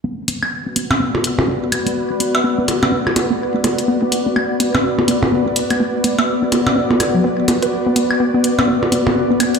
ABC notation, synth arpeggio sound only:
X:1
M:4/4
L:1/16
Q:"Swing 16ths" 1/4=125
K:Bm
V:1 name="Synth arpeggio sound"
B, z B, B, z B, B, z B, B, z B, B, z B, B, | z B, B, z B, B, z B, B, z B, B, z B, B, z | B, B, z B, B, z B, B, z B, B, z B, B, z B, | B, z B, B, z B, B, z B, B, z F, B, z B, B |
z B, B, z B, B, z B, B, z B, B, z B, B, z |]